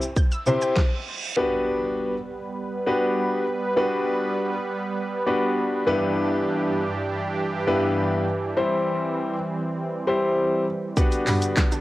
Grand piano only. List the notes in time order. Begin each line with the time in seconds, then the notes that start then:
0.47 C4 E4 G4 C5
1.36 B3 D4 F#4 G4 B4
2.86 B3 D4 F#4 G4 B4
3.76 B3 D4 F#4 G4 B4
5.27 B3 D4 F#4 G4 B4
5.86 G2 B3 D4 E4 G4 B4
7.67 G2 B3 D4 E4 G4 B4
8.57 G3 C4 E4 G4 C5
10.07 G3 C4 E4 G4 C5
10.97 B3 D4 F#4 G4 B4